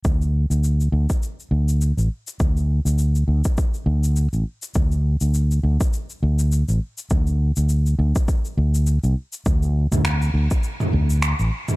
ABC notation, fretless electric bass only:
X:1
M:4/4
L:1/16
Q:"Swing 16ths" 1/4=102
K:Cmix
V:1 name="Fretless electric bass" clef=bass
D,,3 D,,3 D,, z3 D,,3 A,,, z2 | D,,3 D,,3 D,, z3 D,,3 A,,, z2 | D,,3 D,,3 D,, z3 D,,3 A,,, z2 | D,,3 D,,3 D,, z3 D,,3 C,, z2 |
D,,3 D,,3 D,, z3 D,,3 A,,, z2 |]